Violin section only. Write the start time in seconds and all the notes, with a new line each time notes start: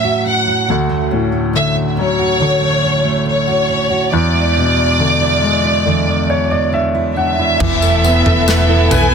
Already playing: E5
0.27 F#5
1.56 E5
1.99 C#5
3.28 C#5
4.14 D5
7.17 E5
8.91 G#5